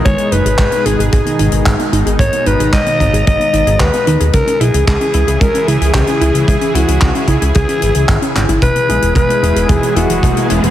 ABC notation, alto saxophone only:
X:1
M:4/4
L:1/16
Q:1/4=112
K:G#m
V:1 name="Alto saxophone"
c2 B4 G2 G6 z2 | c2 B2 d4 d4 B3 z | A2 G2 G4 A2 G2 G4 | G2 F4 z2 G6 z2 |
B4 B4 G2 F4 z2 |]